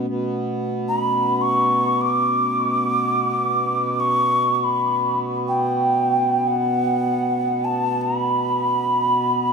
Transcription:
0, 0, Header, 1, 4, 480
1, 0, Start_track
1, 0, Key_signature, 2, "minor"
1, 0, Tempo, 500000
1, 9148, End_track
2, 0, Start_track
2, 0, Title_t, "Ocarina"
2, 0, Program_c, 0, 79
2, 848, Note_on_c, 0, 83, 79
2, 1355, Note_on_c, 0, 85, 84
2, 1369, Note_off_c, 0, 83, 0
2, 1930, Note_on_c, 0, 86, 88
2, 1944, Note_off_c, 0, 85, 0
2, 3837, Note_on_c, 0, 85, 85
2, 3852, Note_off_c, 0, 86, 0
2, 4364, Note_off_c, 0, 85, 0
2, 4364, Note_on_c, 0, 85, 51
2, 4452, Note_on_c, 0, 83, 70
2, 4467, Note_off_c, 0, 85, 0
2, 4978, Note_off_c, 0, 83, 0
2, 5261, Note_on_c, 0, 79, 73
2, 6214, Note_on_c, 0, 78, 75
2, 6228, Note_off_c, 0, 79, 0
2, 7338, Note_on_c, 0, 81, 73
2, 7352, Note_off_c, 0, 78, 0
2, 7691, Note_on_c, 0, 83, 80
2, 7705, Note_off_c, 0, 81, 0
2, 9148, Note_off_c, 0, 83, 0
2, 9148, End_track
3, 0, Start_track
3, 0, Title_t, "Singing bowl"
3, 0, Program_c, 1, 14
3, 0, Note_on_c, 1, 57, 45
3, 0, Note_on_c, 1, 61, 49
3, 558, Note_off_c, 1, 57, 0
3, 583, Note_off_c, 1, 61, 0
3, 9148, End_track
4, 0, Start_track
4, 0, Title_t, "Harmonium"
4, 0, Program_c, 2, 20
4, 73, Note_on_c, 2, 47, 52
4, 9148, Note_off_c, 2, 47, 0
4, 9148, End_track
0, 0, End_of_file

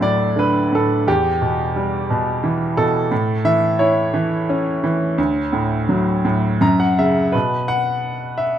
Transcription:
0, 0, Header, 1, 2, 480
1, 0, Start_track
1, 0, Key_signature, 2, "major"
1, 0, Tempo, 688863
1, 744, Time_signature, 3, 2, 24, 8
1, 3610, Tempo, 715990
1, 5893, End_track
2, 0, Start_track
2, 0, Title_t, "Grand piano"
2, 0, Program_c, 0, 0
2, 0, Control_c, 0, 64, 127
2, 0, Note_on_c, 0, 38, 54
2, 0, Note_on_c, 0, 45, 41
2, 0, Note_on_c, 0, 54, 46
2, 0, Note_on_c, 0, 69, 72
2, 0, Note_on_c, 0, 76, 76
2, 8, Note_off_c, 0, 45, 0
2, 8, Note_on_c, 0, 45, 53
2, 17, Note_on_c, 0, 74, 80
2, 243, Note_off_c, 0, 74, 0
2, 251, Note_on_c, 0, 50, 49
2, 270, Note_on_c, 0, 71, 70
2, 493, Note_off_c, 0, 45, 0
2, 504, Note_on_c, 0, 45, 50
2, 515, Note_off_c, 0, 71, 0
2, 522, Note_off_c, 0, 69, 0
2, 522, Note_on_c, 0, 69, 68
2, 718, Note_off_c, 0, 54, 0
2, 719, Note_off_c, 0, 38, 0
2, 727, Note_off_c, 0, 50, 0
2, 739, Note_off_c, 0, 45, 0
2, 739, Note_off_c, 0, 69, 0
2, 748, Note_on_c, 0, 40, 57
2, 752, Control_c, 0, 64, 0
2, 752, Note_on_c, 0, 67, 75
2, 757, Note_off_c, 0, 76, 0
2, 885, Control_c, 0, 64, 127
2, 988, Note_on_c, 0, 47, 47
2, 1227, Note_on_c, 0, 55, 53
2, 1455, Note_off_c, 0, 47, 0
2, 1465, Note_on_c, 0, 47, 57
2, 1697, Note_on_c, 0, 52, 55
2, 1925, Note_off_c, 0, 47, 0
2, 1933, Note_on_c, 0, 69, 77
2, 1936, Note_on_c, 0, 47, 55
2, 1972, Note_off_c, 0, 67, 0
2, 2142, Note_off_c, 0, 55, 0
2, 2144, Note_off_c, 0, 40, 0
2, 2155, Note_off_c, 0, 52, 0
2, 2164, Note_off_c, 0, 47, 0
2, 2170, Note_on_c, 0, 45, 63
2, 2179, Control_c, 0, 64, 0
2, 2319, Control_c, 0, 64, 127
2, 2402, Note_on_c, 0, 52, 52
2, 2405, Note_on_c, 0, 76, 87
2, 2420, Note_off_c, 0, 69, 0
2, 2642, Note_on_c, 0, 73, 73
2, 2644, Note_on_c, 0, 64, 57
2, 2650, Note_off_c, 0, 76, 0
2, 2873, Note_off_c, 0, 52, 0
2, 2883, Note_on_c, 0, 52, 58
2, 3131, Note_on_c, 0, 61, 56
2, 3360, Note_off_c, 0, 52, 0
2, 3370, Note_on_c, 0, 52, 60
2, 3581, Note_off_c, 0, 45, 0
2, 3581, Note_off_c, 0, 64, 0
2, 3598, Note_off_c, 0, 61, 0
2, 3604, Note_off_c, 0, 52, 0
2, 3610, Note_on_c, 0, 38, 70
2, 3618, Control_c, 0, 64, 0
2, 3752, Control_c, 0, 64, 127
2, 3842, Note_on_c, 0, 45, 56
2, 4085, Note_on_c, 0, 54, 56
2, 4316, Note_off_c, 0, 45, 0
2, 4326, Note_on_c, 0, 45, 61
2, 4544, Note_off_c, 0, 73, 0
2, 4546, Note_off_c, 0, 38, 0
2, 4558, Note_off_c, 0, 54, 0
2, 4565, Note_off_c, 0, 45, 0
2, 4568, Note_on_c, 0, 42, 73
2, 4573, Note_on_c, 0, 82, 69
2, 4582, Control_c, 0, 64, 0
2, 4688, Note_off_c, 0, 82, 0
2, 4693, Note_on_c, 0, 78, 72
2, 4703, Control_c, 0, 64, 127
2, 4809, Note_off_c, 0, 78, 0
2, 4819, Note_on_c, 0, 49, 58
2, 4821, Note_on_c, 0, 76, 73
2, 5044, Note_off_c, 0, 42, 0
2, 5044, Note_off_c, 0, 76, 0
2, 5046, Note_on_c, 0, 71, 69
2, 5053, Note_off_c, 0, 49, 0
2, 5062, Note_on_c, 0, 47, 53
2, 5069, Control_c, 0, 64, 0
2, 5173, Control_c, 0, 64, 127
2, 5274, Note_off_c, 0, 71, 0
2, 5287, Note_on_c, 0, 78, 84
2, 5752, Note_on_c, 0, 76, 75
2, 5780, Note_off_c, 0, 78, 0
2, 5893, Note_off_c, 0, 47, 0
2, 5893, Note_off_c, 0, 76, 0
2, 5893, End_track
0, 0, End_of_file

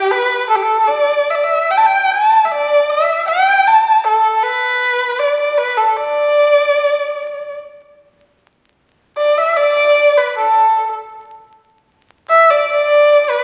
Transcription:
0, 0, Header, 1, 2, 480
1, 0, Start_track
1, 0, Tempo, 798935
1, 54, Time_signature, 2, 2, 24, 8
1, 1496, Tempo, 774194
1, 3896, Tempo, 801068
1, 5816, Tempo, 781250
1, 8195, End_track
2, 0, Start_track
2, 0, Title_t, "Erhu"
2, 0, Program_c, 0, 110
2, 0, Note_on_c, 0, 67, 85
2, 66, Note_on_c, 0, 71, 95
2, 75, Note_off_c, 0, 67, 0
2, 292, Note_off_c, 0, 71, 0
2, 296, Note_on_c, 0, 69, 82
2, 333, Note_on_c, 0, 67, 68
2, 342, Note_off_c, 0, 69, 0
2, 375, Note_on_c, 0, 69, 79
2, 384, Note_off_c, 0, 67, 0
2, 528, Note_on_c, 0, 74, 92
2, 537, Note_off_c, 0, 69, 0
2, 781, Note_on_c, 0, 76, 80
2, 790, Note_off_c, 0, 74, 0
2, 810, Note_on_c, 0, 74, 68
2, 819, Note_off_c, 0, 76, 0
2, 862, Note_on_c, 0, 76, 82
2, 871, Note_off_c, 0, 74, 0
2, 1025, Note_on_c, 0, 79, 90
2, 1034, Note_off_c, 0, 76, 0
2, 1065, Note_on_c, 0, 81, 79
2, 1074, Note_off_c, 0, 79, 0
2, 1116, Note_on_c, 0, 79, 97
2, 1125, Note_off_c, 0, 81, 0
2, 1268, Note_on_c, 0, 81, 89
2, 1277, Note_off_c, 0, 79, 0
2, 1470, Note_on_c, 0, 76, 59
2, 1479, Note_off_c, 0, 81, 0
2, 1511, Note_on_c, 0, 74, 90
2, 1521, Note_off_c, 0, 76, 0
2, 1747, Note_on_c, 0, 76, 84
2, 1756, Note_off_c, 0, 74, 0
2, 1982, Note_off_c, 0, 76, 0
2, 1984, Note_on_c, 0, 79, 101
2, 2231, Note_on_c, 0, 81, 87
2, 2240, Note_off_c, 0, 79, 0
2, 2459, Note_on_c, 0, 69, 84
2, 2468, Note_off_c, 0, 81, 0
2, 2696, Note_on_c, 0, 71, 91
2, 2705, Note_off_c, 0, 69, 0
2, 3170, Note_on_c, 0, 74, 81
2, 3179, Note_off_c, 0, 71, 0
2, 3290, Note_off_c, 0, 74, 0
2, 3299, Note_on_c, 0, 74, 75
2, 3411, Note_on_c, 0, 71, 85
2, 3420, Note_off_c, 0, 74, 0
2, 3530, Note_on_c, 0, 69, 74
2, 3540, Note_off_c, 0, 71, 0
2, 3650, Note_on_c, 0, 74, 88
2, 3659, Note_off_c, 0, 69, 0
2, 4610, Note_off_c, 0, 74, 0
2, 5581, Note_on_c, 0, 74, 82
2, 5702, Note_on_c, 0, 76, 89
2, 5711, Note_off_c, 0, 74, 0
2, 5817, Note_on_c, 0, 74, 110
2, 5826, Note_off_c, 0, 76, 0
2, 6188, Note_on_c, 0, 71, 84
2, 6198, Note_off_c, 0, 74, 0
2, 6303, Note_off_c, 0, 71, 0
2, 6311, Note_on_c, 0, 69, 80
2, 6641, Note_off_c, 0, 69, 0
2, 7492, Note_on_c, 0, 76, 98
2, 7620, Note_on_c, 0, 74, 86
2, 7629, Note_off_c, 0, 76, 0
2, 7736, Note_off_c, 0, 74, 0
2, 7755, Note_on_c, 0, 74, 102
2, 8107, Note_on_c, 0, 71, 82
2, 8116, Note_off_c, 0, 74, 0
2, 8195, Note_off_c, 0, 71, 0
2, 8195, End_track
0, 0, End_of_file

